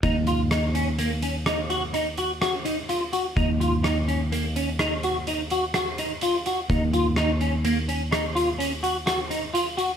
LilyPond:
<<
  \new Staff \with { instrumentName = "Clean electric guitar" } { \time 7/4 \key ees \minor \tempo 4 = 126 ees'8 f'8 ees'8 des'8 bes8 des'8 ees'8 ges'8 ees'8 ges'8 ges'8 ees'8 f'8 ges'8 | ees'8 f'8 ees'8 des'8 bes8 des'8 ees'8 ges'8 ees'8 ges'8 ges'8 ees'8 f'8 ges'8 | ees'8 f'8 ees'8 des'8 bes8 des'8 ees'8 f'8 des'8 ges'8 ges'8 ees'8 f'8 ges'8 | }
  \new Staff \with { instrumentName = "Fretless electric bass" } { \clef bass \time 7/4 \key ees \minor ees,1.~ ees,4 | ees,1.~ ees,4 | ees,1.~ ees,4 | }
  \new DrumStaff \with { instrumentName = "Drums" } \drummode { \time 7/4 <hh bd>8 hh8 <hh ss>8 hh8 hh8 hh8 <hh ss>8 hh8 hh8 hh8 <hh ss>8 hh8 hh8 hh8 | <hh bd>8 hh8 <hh ss>8 hh8 hh8 hh8 <hh ss>8 hh8 hh8 hh8 <hh ss>8 hh8 hh8 hh8 | <hh bd>8 hh8 <hh ss>8 hh8 hh8 hh8 <hh ss>8 hh8 hh8 hh8 <hh ss>8 hh8 hh8 hh8 | }
>>